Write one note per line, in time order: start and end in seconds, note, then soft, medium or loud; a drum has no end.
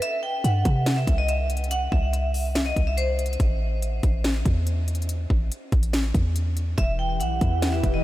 0.02 0.19 E5 loud
0.02 closed hi-hat medium
0.23 0.40 G5 medium
0.44 0.64 G2 loud
0.44 0.94 F#5 medium
0.44 closed hi-hat medium
0.65 1.06 C3 loud
0.65 kick medium
0.65 closed hi-hat medium
0.86 snare loud
0.86 closed hi-hat medium
0.97 1.14 E5 medium
1.07 1.89 C2 loud
1.07 kick medium
1.07 closed hi-hat medium
1.18 1.27 D#5 medium
1.29 1.46 E5 medium
1.29 closed hi-hat medium
1.50 closed hi-hat medium
1.57 closed hi-hat medium
1.64 closed hi-hat soft
1.71 1.88 F#5 medium
1.71 closed hi-hat medium
1.92 2.73 C2 loud
1.92 2.09 E5 medium
1.92 kick medium
2.13 2.63 E5 medium
2.13 closed hi-hat medium
2.34 open hi-hat medium
2.55 snare loud
2.55 closed hi-hat medium
2.66 2.83 D#5 medium
2.76 3.37 C2 loud
2.76 kick loud
2.76 closed hi-hat medium
2.87 2.96 E5 medium
2.97 3.15 C5 medium
2.97 closed hi-hat medium
3.19 closed hi-hat medium
3.26 closed hi-hat medium
3.33 closed hi-hat soft
3.40 4.01 A1 loud
3.40 kick loud
3.40 closed hi-hat medium
3.82 closed hi-hat medium
4.03 4.44 A1 loud
4.03 kick medium
4.03 closed hi-hat medium
4.24 snare loud
4.24 closed hi-hat medium
4.46 5.27 E2 loud
4.46 kick loud
4.46 closed hi-hat medium
4.67 closed hi-hat medium
4.88 closed hi-hat medium
4.95 closed hi-hat medium
5.02 closed hi-hat soft
5.09 closed hi-hat medium
5.30 5.50 A1 loud
5.30 kick medium
5.52 closed hi-hat medium
5.72 6.13 A1 loud
5.72 kick medium
5.72 closed hi-hat soft
5.83 closed hi-hat medium
5.93 snare loud
5.93 closed hi-hat medium
6.14 6.75 E2 loud
6.14 kick medium
6.14 closed hi-hat medium
6.36 closed hi-hat medium
6.57 closed hi-hat medium
6.78 7.22 E1 loud
6.78 8.04 E3 medium
6.78 8.04 E4 medium
6.78 8.04 G4 medium
6.78 8.04 B4 medium
6.78 6.95 E5 loud
6.78 kick loud
6.78 closed hi-hat medium
6.99 7.16 G5 medium
7.20 7.40 B1 loud
7.20 7.70 F#5 medium
7.20 closed hi-hat medium
7.41 7.82 E2 loud
7.41 kick medium
7.41 closed hi-hat medium
7.62 snare loud
7.62 closed hi-hat medium
7.73 7.90 E5 medium
7.83 8.04 E1 loud
7.83 kick medium
7.83 closed hi-hat medium
7.94 8.03 D#5 medium